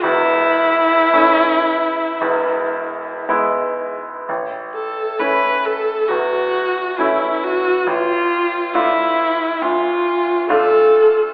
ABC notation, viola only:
X:1
M:4/4
L:1/8
Q:1/4=67
K:A
V:1 name="Viola"
E6 z2 | z A B A F2 E F | =F2 E2 F2 A2 |]